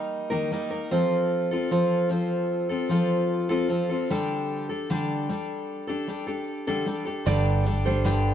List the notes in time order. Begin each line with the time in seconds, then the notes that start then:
Already playing: G3 A#3 D#4 A#4
0.30 D#3 G3 A#3 D#4 A#4
0.51 G3 A#3 D#4 A#4
0.70 A#3 D#4 A#4
0.91 F3 C4 F4 A4
1.51 C4 F4 A4
1.71 F3 C4 F4 A4
2.09 F3 C4 F4 A4
2.69 C4 F4 A4
2.89 F3 C4 F4 A4
3.49 F3 C4 F4 A4
3.69 F3 C4 F4 A4
3.89 C4 F4 A4
4.10 D3 G3 D4 G4 A4
4.69 D4 G4 A4
4.90 D3 G3 D4 G4 A4
5.29 G3 D4 G4 A4
5.87 D4 G4 A4
6.07 G3 D4 G4 A4
6.27 D4 G4 A4
6.67 D3 G3 D4 G4 A4
6.86 G3 D4 G4 A4
7.05 D4 G4 A4
7.26 G1 G2 D3 G3 D4 G4 A4 D5
7.65 G3 D4 G4 A4
7.85 G3 D4 G4 A4 C5
8.04 G2 D3 G3 D4 G4 A4, tambourine